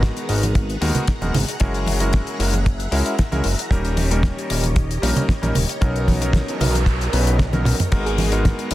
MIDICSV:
0, 0, Header, 1, 7, 480
1, 0, Start_track
1, 0, Key_signature, 5, "minor"
1, 0, Tempo, 526316
1, 1464, Time_signature, 4, 2, 24, 8
1, 7972, End_track
2, 0, Start_track
2, 0, Title_t, "String machine"
2, 0, Program_c, 0, 50
2, 0, Note_on_c, 0, 59, 75
2, 0, Note_on_c, 0, 68, 85
2, 0, Note_on_c, 0, 78, 77
2, 0, Note_on_c, 0, 82, 92
2, 1445, Note_off_c, 0, 59, 0
2, 1466, Note_on_c, 0, 76, 76
2, 3347, Note_off_c, 0, 68, 0
2, 3347, Note_off_c, 0, 78, 0
2, 3366, Note_off_c, 0, 76, 0
2, 3382, Note_on_c, 0, 67, 85
2, 3382, Note_on_c, 0, 73, 77
2, 3384, Note_on_c, 0, 75, 75
2, 5268, Note_off_c, 0, 82, 0
2, 5284, Note_off_c, 0, 67, 0
2, 5307, Note_on_c, 0, 70, 82
2, 7187, Note_off_c, 0, 73, 0
2, 7187, Note_off_c, 0, 75, 0
2, 7206, Note_off_c, 0, 70, 0
2, 7227, Note_on_c, 0, 68, 85
2, 7227, Note_on_c, 0, 78, 73
2, 7228, Note_on_c, 0, 59, 75
2, 7228, Note_on_c, 0, 82, 90
2, 7972, Note_off_c, 0, 59, 0
2, 7972, Note_off_c, 0, 68, 0
2, 7972, Note_off_c, 0, 78, 0
2, 7972, Note_off_c, 0, 82, 0
2, 7972, End_track
3, 0, Start_track
3, 0, Title_t, "Analog synth lead"
3, 0, Program_c, 1, 81
3, 7348, Note_on_c, 1, 68, 90
3, 7422, Note_off_c, 1, 68, 0
3, 7466, Note_on_c, 1, 68, 73
3, 7545, Note_off_c, 1, 68, 0
3, 7942, Note_on_c, 1, 71, 96
3, 7972, Note_off_c, 1, 71, 0
3, 7972, End_track
4, 0, Start_track
4, 0, Title_t, "Electric grand piano"
4, 0, Program_c, 2, 2
4, 0, Note_on_c, 2, 56, 81
4, 0, Note_on_c, 2, 59, 73
4, 0, Note_on_c, 2, 63, 74
4, 0, Note_on_c, 2, 66, 76
4, 0, Note_on_c, 2, 70, 86
4, 234, Note_off_c, 2, 56, 0
4, 236, Note_off_c, 2, 59, 0
4, 236, Note_off_c, 2, 63, 0
4, 238, Note_off_c, 2, 66, 0
4, 239, Note_off_c, 2, 70, 0
4, 259, Note_on_c, 2, 56, 68
4, 261, Note_on_c, 2, 59, 65
4, 264, Note_on_c, 2, 63, 64
4, 265, Note_on_c, 2, 66, 65
4, 268, Note_on_c, 2, 70, 78
4, 385, Note_off_c, 2, 56, 0
4, 386, Note_off_c, 2, 59, 0
4, 388, Note_off_c, 2, 63, 0
4, 389, Note_off_c, 2, 66, 0
4, 390, Note_off_c, 2, 70, 0
4, 738, Note_on_c, 2, 56, 91
4, 741, Note_on_c, 2, 59, 84
4, 743, Note_on_c, 2, 63, 80
4, 744, Note_on_c, 2, 66, 82
4, 748, Note_on_c, 2, 70, 103
4, 933, Note_off_c, 2, 56, 0
4, 934, Note_off_c, 2, 59, 0
4, 935, Note_off_c, 2, 63, 0
4, 936, Note_off_c, 2, 66, 0
4, 938, Note_off_c, 2, 70, 0
4, 1105, Note_on_c, 2, 56, 82
4, 1107, Note_on_c, 2, 59, 78
4, 1110, Note_on_c, 2, 63, 76
4, 1111, Note_on_c, 2, 66, 76
4, 1113, Note_on_c, 2, 70, 92
4, 1221, Note_off_c, 2, 56, 0
4, 1222, Note_off_c, 2, 59, 0
4, 1223, Note_off_c, 2, 63, 0
4, 1224, Note_off_c, 2, 66, 0
4, 1225, Note_off_c, 2, 70, 0
4, 1460, Note_on_c, 2, 56, 95
4, 1462, Note_on_c, 2, 61, 85
4, 1464, Note_on_c, 2, 64, 82
4, 1467, Note_on_c, 2, 66, 82
4, 1469, Note_on_c, 2, 70, 103
4, 1797, Note_off_c, 2, 56, 0
4, 1798, Note_off_c, 2, 61, 0
4, 1799, Note_off_c, 2, 64, 0
4, 1801, Note_off_c, 2, 66, 0
4, 1801, Note_off_c, 2, 70, 0
4, 1823, Note_on_c, 2, 56, 80
4, 1826, Note_on_c, 2, 61, 75
4, 1829, Note_on_c, 2, 64, 76
4, 1831, Note_on_c, 2, 66, 73
4, 1834, Note_on_c, 2, 70, 94
4, 2154, Note_off_c, 2, 56, 0
4, 2155, Note_off_c, 2, 61, 0
4, 2156, Note_off_c, 2, 64, 0
4, 2157, Note_off_c, 2, 66, 0
4, 2159, Note_off_c, 2, 70, 0
4, 2180, Note_on_c, 2, 56, 71
4, 2181, Note_on_c, 2, 61, 65
4, 2184, Note_on_c, 2, 64, 67
4, 2187, Note_on_c, 2, 66, 66
4, 2188, Note_on_c, 2, 70, 80
4, 2306, Note_off_c, 2, 56, 0
4, 2306, Note_off_c, 2, 61, 0
4, 2308, Note_off_c, 2, 64, 0
4, 2309, Note_off_c, 2, 66, 0
4, 2310, Note_off_c, 2, 70, 0
4, 2657, Note_on_c, 2, 56, 93
4, 2659, Note_on_c, 2, 61, 81
4, 2661, Note_on_c, 2, 64, 84
4, 2665, Note_on_c, 2, 66, 81
4, 2666, Note_on_c, 2, 70, 96
4, 2853, Note_off_c, 2, 56, 0
4, 2853, Note_off_c, 2, 61, 0
4, 2855, Note_off_c, 2, 64, 0
4, 2856, Note_off_c, 2, 66, 0
4, 2857, Note_off_c, 2, 70, 0
4, 3022, Note_on_c, 2, 56, 84
4, 3025, Note_on_c, 2, 61, 78
4, 3026, Note_on_c, 2, 64, 77
4, 3029, Note_on_c, 2, 66, 79
4, 3031, Note_on_c, 2, 70, 95
4, 3139, Note_off_c, 2, 56, 0
4, 3141, Note_off_c, 2, 61, 0
4, 3141, Note_off_c, 2, 64, 0
4, 3143, Note_off_c, 2, 66, 0
4, 3144, Note_off_c, 2, 70, 0
4, 3378, Note_on_c, 2, 55, 92
4, 3381, Note_on_c, 2, 58, 86
4, 3381, Note_on_c, 2, 61, 85
4, 3384, Note_on_c, 2, 63, 87
4, 3387, Note_on_c, 2, 70, 103
4, 3716, Note_off_c, 2, 55, 0
4, 3717, Note_off_c, 2, 58, 0
4, 3718, Note_off_c, 2, 61, 0
4, 3719, Note_off_c, 2, 63, 0
4, 3721, Note_off_c, 2, 70, 0
4, 3744, Note_on_c, 2, 55, 87
4, 3747, Note_on_c, 2, 58, 78
4, 3749, Note_on_c, 2, 61, 75
4, 3752, Note_on_c, 2, 63, 75
4, 3754, Note_on_c, 2, 70, 91
4, 4074, Note_off_c, 2, 55, 0
4, 4075, Note_off_c, 2, 58, 0
4, 4076, Note_off_c, 2, 61, 0
4, 4078, Note_off_c, 2, 63, 0
4, 4079, Note_off_c, 2, 70, 0
4, 4099, Note_on_c, 2, 55, 70
4, 4101, Note_on_c, 2, 58, 68
4, 4102, Note_on_c, 2, 61, 67
4, 4105, Note_on_c, 2, 63, 67
4, 4108, Note_on_c, 2, 70, 80
4, 4225, Note_off_c, 2, 55, 0
4, 4226, Note_off_c, 2, 58, 0
4, 4227, Note_off_c, 2, 61, 0
4, 4228, Note_off_c, 2, 63, 0
4, 4230, Note_off_c, 2, 70, 0
4, 4578, Note_on_c, 2, 55, 93
4, 4580, Note_on_c, 2, 58, 81
4, 4582, Note_on_c, 2, 61, 87
4, 4585, Note_on_c, 2, 63, 81
4, 4588, Note_on_c, 2, 70, 102
4, 4773, Note_off_c, 2, 55, 0
4, 4774, Note_off_c, 2, 58, 0
4, 4775, Note_off_c, 2, 61, 0
4, 4777, Note_off_c, 2, 63, 0
4, 4778, Note_off_c, 2, 70, 0
4, 4941, Note_on_c, 2, 55, 85
4, 4944, Note_on_c, 2, 58, 78
4, 4946, Note_on_c, 2, 61, 82
4, 4949, Note_on_c, 2, 63, 81
4, 4951, Note_on_c, 2, 70, 97
4, 5059, Note_off_c, 2, 55, 0
4, 5060, Note_off_c, 2, 58, 0
4, 5061, Note_off_c, 2, 61, 0
4, 5063, Note_off_c, 2, 63, 0
4, 5064, Note_off_c, 2, 70, 0
4, 5299, Note_on_c, 2, 54, 95
4, 5300, Note_on_c, 2, 59, 84
4, 5303, Note_on_c, 2, 61, 87
4, 5305, Note_on_c, 2, 63, 85
4, 5307, Note_on_c, 2, 70, 103
4, 5636, Note_off_c, 2, 54, 0
4, 5637, Note_off_c, 2, 59, 0
4, 5639, Note_off_c, 2, 61, 0
4, 5639, Note_off_c, 2, 63, 0
4, 5641, Note_off_c, 2, 70, 0
4, 5661, Note_on_c, 2, 54, 82
4, 5662, Note_on_c, 2, 59, 78
4, 5665, Note_on_c, 2, 61, 75
4, 5668, Note_on_c, 2, 63, 75
4, 5670, Note_on_c, 2, 70, 93
4, 5992, Note_off_c, 2, 54, 0
4, 5993, Note_off_c, 2, 59, 0
4, 5994, Note_off_c, 2, 61, 0
4, 5996, Note_off_c, 2, 63, 0
4, 5997, Note_off_c, 2, 70, 0
4, 6017, Note_on_c, 2, 54, 68
4, 6018, Note_on_c, 2, 59, 63
4, 6021, Note_on_c, 2, 61, 66
4, 6024, Note_on_c, 2, 63, 65
4, 6026, Note_on_c, 2, 70, 80
4, 6144, Note_off_c, 2, 54, 0
4, 6145, Note_off_c, 2, 59, 0
4, 6146, Note_off_c, 2, 61, 0
4, 6148, Note_off_c, 2, 63, 0
4, 6149, Note_off_c, 2, 70, 0
4, 6499, Note_on_c, 2, 54, 79
4, 6502, Note_on_c, 2, 59, 73
4, 6503, Note_on_c, 2, 61, 69
4, 6506, Note_on_c, 2, 63, 75
4, 6508, Note_on_c, 2, 71, 86
4, 6694, Note_off_c, 2, 54, 0
4, 6695, Note_off_c, 2, 59, 0
4, 6696, Note_off_c, 2, 61, 0
4, 6697, Note_off_c, 2, 63, 0
4, 6698, Note_off_c, 2, 71, 0
4, 6865, Note_on_c, 2, 54, 82
4, 6867, Note_on_c, 2, 59, 73
4, 6870, Note_on_c, 2, 61, 71
4, 6872, Note_on_c, 2, 63, 73
4, 6874, Note_on_c, 2, 70, 87
4, 7055, Note_off_c, 2, 54, 0
4, 7056, Note_off_c, 2, 59, 0
4, 7057, Note_off_c, 2, 61, 0
4, 7058, Note_off_c, 2, 63, 0
4, 7059, Note_off_c, 2, 70, 0
4, 7220, Note_on_c, 2, 56, 90
4, 7221, Note_on_c, 2, 59, 84
4, 7224, Note_on_c, 2, 63, 87
4, 7226, Note_on_c, 2, 66, 82
4, 7229, Note_on_c, 2, 70, 105
4, 7557, Note_off_c, 2, 56, 0
4, 7558, Note_off_c, 2, 59, 0
4, 7559, Note_off_c, 2, 63, 0
4, 7560, Note_off_c, 2, 66, 0
4, 7562, Note_off_c, 2, 70, 0
4, 7584, Note_on_c, 2, 56, 83
4, 7587, Note_on_c, 2, 59, 77
4, 7588, Note_on_c, 2, 63, 72
4, 7592, Note_on_c, 2, 66, 78
4, 7593, Note_on_c, 2, 70, 91
4, 7914, Note_off_c, 2, 56, 0
4, 7915, Note_off_c, 2, 59, 0
4, 7916, Note_off_c, 2, 63, 0
4, 7918, Note_off_c, 2, 66, 0
4, 7918, Note_off_c, 2, 70, 0
4, 7939, Note_on_c, 2, 56, 73
4, 7940, Note_on_c, 2, 59, 65
4, 7943, Note_on_c, 2, 63, 65
4, 7972, Note_off_c, 2, 56, 0
4, 7972, Note_off_c, 2, 59, 0
4, 7972, Note_off_c, 2, 63, 0
4, 7972, End_track
5, 0, Start_track
5, 0, Title_t, "Analog synth bass"
5, 0, Program_c, 3, 38
5, 0, Note_on_c, 3, 32, 98
5, 105, Note_off_c, 3, 32, 0
5, 265, Note_on_c, 3, 32, 96
5, 704, Note_off_c, 3, 32, 0
5, 743, Note_on_c, 3, 39, 100
5, 841, Note_off_c, 3, 39, 0
5, 1110, Note_on_c, 3, 27, 87
5, 1199, Note_off_c, 3, 27, 0
5, 1223, Note_on_c, 3, 32, 83
5, 1321, Note_off_c, 3, 32, 0
5, 1467, Note_on_c, 3, 30, 96
5, 2026, Note_off_c, 3, 30, 0
5, 2184, Note_on_c, 3, 30, 99
5, 2623, Note_off_c, 3, 30, 0
5, 2662, Note_on_c, 3, 37, 103
5, 2761, Note_off_c, 3, 37, 0
5, 3029, Note_on_c, 3, 37, 84
5, 3118, Note_off_c, 3, 37, 0
5, 3145, Note_on_c, 3, 30, 86
5, 3242, Note_off_c, 3, 30, 0
5, 3382, Note_on_c, 3, 27, 93
5, 3943, Note_off_c, 3, 27, 0
5, 4105, Note_on_c, 3, 27, 99
5, 4544, Note_off_c, 3, 27, 0
5, 4585, Note_on_c, 3, 34, 99
5, 4682, Note_off_c, 3, 34, 0
5, 4949, Note_on_c, 3, 34, 83
5, 5038, Note_off_c, 3, 34, 0
5, 5064, Note_on_c, 3, 27, 84
5, 5161, Note_off_c, 3, 27, 0
5, 5307, Note_on_c, 3, 35, 99
5, 5866, Note_off_c, 3, 35, 0
5, 6024, Note_on_c, 3, 35, 99
5, 6463, Note_off_c, 3, 35, 0
5, 6504, Note_on_c, 3, 35, 99
5, 7065, Note_off_c, 3, 35, 0
5, 7226, Note_on_c, 3, 32, 98
5, 7786, Note_off_c, 3, 32, 0
5, 7972, End_track
6, 0, Start_track
6, 0, Title_t, "Noise sweep"
6, 0, Program_c, 4, 103
6, 5303, Note_on_c, 4, 60, 56
6, 7224, Note_off_c, 4, 60, 0
6, 7972, End_track
7, 0, Start_track
7, 0, Title_t, "Drums"
7, 25, Note_on_c, 9, 36, 103
7, 26, Note_on_c, 9, 38, 121
7, 27, Note_on_c, 9, 42, 63
7, 116, Note_off_c, 9, 36, 0
7, 117, Note_off_c, 9, 38, 0
7, 118, Note_off_c, 9, 42, 0
7, 151, Note_on_c, 9, 42, 45
7, 243, Note_off_c, 9, 42, 0
7, 264, Note_on_c, 9, 46, 101
7, 355, Note_off_c, 9, 46, 0
7, 394, Note_on_c, 9, 42, 66
7, 395, Note_on_c, 9, 63, 63
7, 485, Note_off_c, 9, 42, 0
7, 486, Note_off_c, 9, 63, 0
7, 503, Note_on_c, 9, 42, 66
7, 505, Note_on_c, 9, 36, 106
7, 595, Note_off_c, 9, 42, 0
7, 596, Note_off_c, 9, 36, 0
7, 635, Note_on_c, 9, 42, 41
7, 726, Note_off_c, 9, 42, 0
7, 745, Note_on_c, 9, 46, 94
7, 836, Note_off_c, 9, 46, 0
7, 865, Note_on_c, 9, 42, 60
7, 865, Note_on_c, 9, 64, 85
7, 956, Note_off_c, 9, 42, 0
7, 957, Note_off_c, 9, 64, 0
7, 980, Note_on_c, 9, 42, 64
7, 985, Note_on_c, 9, 36, 100
7, 985, Note_on_c, 9, 38, 105
7, 1071, Note_off_c, 9, 42, 0
7, 1076, Note_off_c, 9, 36, 0
7, 1076, Note_off_c, 9, 38, 0
7, 1111, Note_on_c, 9, 63, 94
7, 1113, Note_on_c, 9, 42, 37
7, 1202, Note_off_c, 9, 63, 0
7, 1204, Note_off_c, 9, 42, 0
7, 1226, Note_on_c, 9, 46, 96
7, 1227, Note_on_c, 9, 64, 92
7, 1317, Note_off_c, 9, 46, 0
7, 1318, Note_off_c, 9, 64, 0
7, 1354, Note_on_c, 9, 42, 67
7, 1445, Note_off_c, 9, 42, 0
7, 1457, Note_on_c, 9, 42, 66
7, 1467, Note_on_c, 9, 36, 116
7, 1548, Note_off_c, 9, 42, 0
7, 1559, Note_off_c, 9, 36, 0
7, 1591, Note_on_c, 9, 42, 44
7, 1682, Note_off_c, 9, 42, 0
7, 1701, Note_on_c, 9, 63, 87
7, 1710, Note_on_c, 9, 46, 102
7, 1792, Note_off_c, 9, 63, 0
7, 1801, Note_off_c, 9, 46, 0
7, 1827, Note_on_c, 9, 42, 61
7, 1918, Note_off_c, 9, 42, 0
7, 1940, Note_on_c, 9, 42, 60
7, 1949, Note_on_c, 9, 36, 108
7, 1949, Note_on_c, 9, 38, 98
7, 2032, Note_off_c, 9, 42, 0
7, 2041, Note_off_c, 9, 36, 0
7, 2041, Note_off_c, 9, 38, 0
7, 2069, Note_on_c, 9, 42, 45
7, 2161, Note_off_c, 9, 42, 0
7, 2188, Note_on_c, 9, 46, 99
7, 2280, Note_off_c, 9, 46, 0
7, 2312, Note_on_c, 9, 63, 58
7, 2314, Note_on_c, 9, 42, 62
7, 2403, Note_off_c, 9, 63, 0
7, 2405, Note_off_c, 9, 42, 0
7, 2427, Note_on_c, 9, 36, 112
7, 2427, Note_on_c, 9, 42, 63
7, 2518, Note_off_c, 9, 36, 0
7, 2518, Note_off_c, 9, 42, 0
7, 2552, Note_on_c, 9, 42, 45
7, 2643, Note_off_c, 9, 42, 0
7, 2664, Note_on_c, 9, 46, 95
7, 2755, Note_off_c, 9, 46, 0
7, 2789, Note_on_c, 9, 42, 57
7, 2880, Note_off_c, 9, 42, 0
7, 2906, Note_on_c, 9, 42, 68
7, 2908, Note_on_c, 9, 38, 107
7, 2910, Note_on_c, 9, 36, 101
7, 2997, Note_off_c, 9, 42, 0
7, 2999, Note_off_c, 9, 38, 0
7, 3001, Note_off_c, 9, 36, 0
7, 3028, Note_on_c, 9, 63, 89
7, 3029, Note_on_c, 9, 42, 40
7, 3119, Note_off_c, 9, 63, 0
7, 3120, Note_off_c, 9, 42, 0
7, 3136, Note_on_c, 9, 46, 95
7, 3227, Note_off_c, 9, 46, 0
7, 3275, Note_on_c, 9, 42, 66
7, 3366, Note_off_c, 9, 42, 0
7, 3381, Note_on_c, 9, 36, 109
7, 3392, Note_on_c, 9, 42, 66
7, 3472, Note_off_c, 9, 36, 0
7, 3483, Note_off_c, 9, 42, 0
7, 3508, Note_on_c, 9, 42, 45
7, 3599, Note_off_c, 9, 42, 0
7, 3621, Note_on_c, 9, 46, 92
7, 3624, Note_on_c, 9, 63, 74
7, 3712, Note_off_c, 9, 46, 0
7, 3715, Note_off_c, 9, 63, 0
7, 3750, Note_on_c, 9, 42, 64
7, 3841, Note_off_c, 9, 42, 0
7, 3858, Note_on_c, 9, 36, 118
7, 3863, Note_on_c, 9, 38, 113
7, 3863, Note_on_c, 9, 42, 70
7, 3950, Note_off_c, 9, 36, 0
7, 3954, Note_off_c, 9, 38, 0
7, 3954, Note_off_c, 9, 42, 0
7, 4000, Note_on_c, 9, 42, 44
7, 4091, Note_off_c, 9, 42, 0
7, 4105, Note_on_c, 9, 46, 113
7, 4196, Note_off_c, 9, 46, 0
7, 4226, Note_on_c, 9, 63, 61
7, 4227, Note_on_c, 9, 42, 62
7, 4317, Note_off_c, 9, 63, 0
7, 4318, Note_off_c, 9, 42, 0
7, 4340, Note_on_c, 9, 42, 65
7, 4343, Note_on_c, 9, 36, 114
7, 4432, Note_off_c, 9, 42, 0
7, 4435, Note_off_c, 9, 36, 0
7, 4475, Note_on_c, 9, 42, 50
7, 4567, Note_off_c, 9, 42, 0
7, 4589, Note_on_c, 9, 46, 103
7, 4680, Note_off_c, 9, 46, 0
7, 4708, Note_on_c, 9, 64, 85
7, 4712, Note_on_c, 9, 42, 59
7, 4799, Note_off_c, 9, 64, 0
7, 4803, Note_off_c, 9, 42, 0
7, 4823, Note_on_c, 9, 36, 107
7, 4830, Note_on_c, 9, 38, 104
7, 4830, Note_on_c, 9, 42, 67
7, 4914, Note_off_c, 9, 36, 0
7, 4921, Note_off_c, 9, 42, 0
7, 4922, Note_off_c, 9, 38, 0
7, 4950, Note_on_c, 9, 63, 84
7, 4952, Note_on_c, 9, 42, 49
7, 5041, Note_off_c, 9, 63, 0
7, 5043, Note_off_c, 9, 42, 0
7, 5062, Note_on_c, 9, 64, 87
7, 5066, Note_on_c, 9, 46, 106
7, 5153, Note_off_c, 9, 64, 0
7, 5157, Note_off_c, 9, 46, 0
7, 5192, Note_on_c, 9, 42, 68
7, 5283, Note_off_c, 9, 42, 0
7, 5305, Note_on_c, 9, 42, 69
7, 5306, Note_on_c, 9, 36, 105
7, 5396, Note_off_c, 9, 42, 0
7, 5398, Note_off_c, 9, 36, 0
7, 5433, Note_on_c, 9, 42, 45
7, 5524, Note_off_c, 9, 42, 0
7, 5544, Note_on_c, 9, 36, 55
7, 5547, Note_on_c, 9, 46, 91
7, 5551, Note_on_c, 9, 63, 96
7, 5635, Note_off_c, 9, 36, 0
7, 5638, Note_off_c, 9, 46, 0
7, 5642, Note_off_c, 9, 63, 0
7, 5670, Note_on_c, 9, 42, 68
7, 5762, Note_off_c, 9, 42, 0
7, 5776, Note_on_c, 9, 36, 110
7, 5785, Note_on_c, 9, 42, 63
7, 5797, Note_on_c, 9, 38, 119
7, 5867, Note_off_c, 9, 36, 0
7, 5876, Note_off_c, 9, 42, 0
7, 5888, Note_off_c, 9, 38, 0
7, 5913, Note_on_c, 9, 42, 42
7, 6005, Note_off_c, 9, 42, 0
7, 6025, Note_on_c, 9, 64, 83
7, 6029, Note_on_c, 9, 46, 106
7, 6116, Note_off_c, 9, 64, 0
7, 6121, Note_off_c, 9, 46, 0
7, 6151, Note_on_c, 9, 63, 66
7, 6158, Note_on_c, 9, 42, 69
7, 6242, Note_off_c, 9, 63, 0
7, 6250, Note_off_c, 9, 42, 0
7, 6258, Note_on_c, 9, 36, 109
7, 6262, Note_on_c, 9, 42, 66
7, 6349, Note_off_c, 9, 36, 0
7, 6353, Note_off_c, 9, 42, 0
7, 6394, Note_on_c, 9, 42, 47
7, 6486, Note_off_c, 9, 42, 0
7, 6504, Note_on_c, 9, 46, 100
7, 6595, Note_off_c, 9, 46, 0
7, 6631, Note_on_c, 9, 42, 62
7, 6722, Note_off_c, 9, 42, 0
7, 6739, Note_on_c, 9, 48, 57
7, 6743, Note_on_c, 9, 36, 101
7, 6744, Note_on_c, 9, 42, 70
7, 6750, Note_on_c, 9, 38, 114
7, 6830, Note_off_c, 9, 48, 0
7, 6835, Note_off_c, 9, 36, 0
7, 6835, Note_off_c, 9, 42, 0
7, 6841, Note_off_c, 9, 38, 0
7, 6867, Note_on_c, 9, 48, 57
7, 6867, Note_on_c, 9, 63, 83
7, 6868, Note_on_c, 9, 42, 40
7, 6958, Note_off_c, 9, 63, 0
7, 6959, Note_off_c, 9, 48, 0
7, 6960, Note_off_c, 9, 42, 0
7, 6980, Note_on_c, 9, 47, 88
7, 6988, Note_on_c, 9, 46, 102
7, 7071, Note_off_c, 9, 47, 0
7, 7079, Note_off_c, 9, 46, 0
7, 7112, Note_on_c, 9, 42, 70
7, 7113, Note_on_c, 9, 45, 83
7, 7204, Note_off_c, 9, 42, 0
7, 7204, Note_off_c, 9, 45, 0
7, 7221, Note_on_c, 9, 42, 60
7, 7223, Note_on_c, 9, 49, 77
7, 7225, Note_on_c, 9, 36, 107
7, 7313, Note_off_c, 9, 42, 0
7, 7314, Note_off_c, 9, 49, 0
7, 7317, Note_off_c, 9, 36, 0
7, 7355, Note_on_c, 9, 42, 45
7, 7446, Note_off_c, 9, 42, 0
7, 7460, Note_on_c, 9, 63, 84
7, 7464, Note_on_c, 9, 46, 94
7, 7551, Note_off_c, 9, 63, 0
7, 7555, Note_off_c, 9, 46, 0
7, 7587, Note_on_c, 9, 42, 70
7, 7678, Note_off_c, 9, 42, 0
7, 7707, Note_on_c, 9, 38, 116
7, 7708, Note_on_c, 9, 42, 69
7, 7710, Note_on_c, 9, 36, 107
7, 7798, Note_off_c, 9, 38, 0
7, 7799, Note_off_c, 9, 42, 0
7, 7801, Note_off_c, 9, 36, 0
7, 7833, Note_on_c, 9, 42, 40
7, 7924, Note_off_c, 9, 42, 0
7, 7941, Note_on_c, 9, 46, 123
7, 7972, Note_off_c, 9, 46, 0
7, 7972, End_track
0, 0, End_of_file